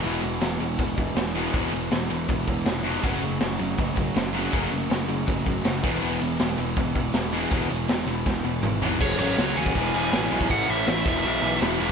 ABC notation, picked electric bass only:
X:1
M:4/4
L:1/8
Q:1/4=161
K:Emix
V:1 name="Picked electric bass" clef=bass
E,,, E,,, E,,, E,,, E,,,2 E,,,2 | E,,, E,,, E,,, E,,, E,,, E,,, ^E,,,2 | F,,, F,,, F,,, F,,, F,,,2 F,,,2 | F,,, F,,, F,,, F,,, F,,, F,,, F,,, E,,, |
E,,, E,,, E,,, E,,, E,,,2 E,,,2 | E,,, E,,, E,,, E,,, E,,, E,,, G,,,2 | F,,, A,,, C,, ^D,, E,,, E,,, A,,, B,,, | A,,, A,,, A,,, E,,, B,,, B,,, E,,, E,,, |]